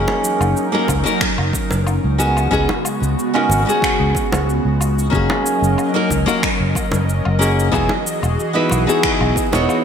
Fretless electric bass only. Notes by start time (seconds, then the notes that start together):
0.41 F#1
0.89 C#2
1.39 F#1
1.72 F#1
2.04 C#2
2.52 C#2
3.02 C#2
3.49 G#1
4.00 C#2
4.32 C#2
4.65 C#2
5.13 F#1
5.62 F#1
6.11 C#2
6.61 F#1
6.93 F#1
7.26 F#1
7.73 E1
8.23 E1
8.72 B1
9.21 B1
9.54 E1